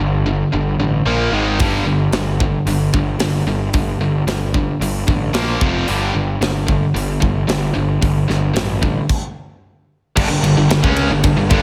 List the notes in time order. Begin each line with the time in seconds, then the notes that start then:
Already playing: G2 D3
0.00 G1
0.26 G2 D3
0.52 G1 G2 D3
0.78 A1 G2 D3
1.06 A#1 A#2 F3 A#3
1.32 G#1 G#2 D#3 G#3
1.59 G1 G2 D3 G3, kick, open hi-hat
1.85 G1 G2 D3
2.12 G1 G2 D3, snare, open hi-hat
2.40 G2 D3, kick
2.66 G1 G2 D3, open hi-hat
2.94 G1 G2 D3, kick
3.19 G1 G2 D3, snare, open hi-hat
3.46 G1 G2 D3
3.73 G1 G2 D3, kick, open hi-hat
3.99 G1 G2 D3
4.26 G1 G2 D3, snare, open hi-hat
4.54 G2 D3, kick
4.80 G1 G2 D3, open hi-hat
5.07 A1 G2 D3, kick
5.34 A#1 A#2 F3 A#3, snare, open hi-hat
5.61 F1 F2 C3 F3, kick
5.87 G1 G2 D3 G3, open hi-hat
6.13 G1 G2 D3
6.41 G1 G2 D3, snare, open hi-hat
6.67 G2 D3, kick
6.94 G1 G2 D3, open hi-hat
7.20 G1 G2 D3, kick
7.47 G1 G2 D3, snare, open hi-hat
7.74 G1 G2 D3
8.02 G1 G2 D3, kick, open hi-hat
8.28 G1 G2 D3, snare
8.53 A1 G2 D3, snare, open hi-hat
8.82 G2 D3, kick
9.09 kick, crash
10.16 G1 G2 D3 A#3 G4 A5, kick, crash
10.30 G1 G2 D3
10.43 G1 G2 D3, ride
10.57 G1 G2 D3
10.69 G1 G2 D3, snare, ride
10.83 C#2 C#3 G#3 C#4, kick
10.96 ride
11.10 G1 G2 D3
11.23 G1 G2 D3, kick, ride
11.37 G1 G2 D3
11.50 G1 G2 D3, kick, ride